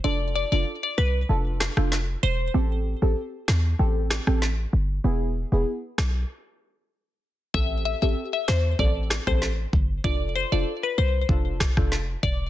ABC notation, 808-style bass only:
X:1
M:4/4
L:1/16
Q:1/4=96
K:Am
V:1 name="808-style bass" clef=bass
F,,,3 F,,, z2 C,,2 F,,,3 F,,,3 E,,,2 | A,,,3 A,,, z2 E,,2 A,,,3 A,,,3 G,,,2 | E,,,3 E,,, z2 B,,,2 z8 | A,,,3 A,,, z2 E,,2 A,,,3 A,,,3 G,,,2 |
F,,,3 F,,, z2 C,,2 F,,,3 F,,,3 E,,,2 |]